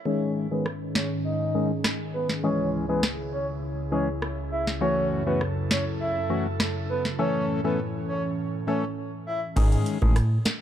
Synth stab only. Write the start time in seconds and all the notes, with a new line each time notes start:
0.05 D#3 G#3 C#4 G#4
0.51 D#3 G#3 C#4 G#4
1.55 D#3 G#3 C#4 G#4
2.44 E3 G#3 C#4 G#4
2.89 E3 G#3 C#4 G#4
3.92 E3 G#3 C#4 G#4
4.81 E3 A3 C#4 F#4
5.26 E3 A3 C#4 F#4
6.30 E3 A3 C#4 F#4
7.19 E3 A3 C#4 A4
7.64 E3 A3 C#4 A4
8.67 E3 A3 C#4 A4
9.56 D#3 G#3 C#4 G#4
10.02 D#3 G#3 C#4 G#4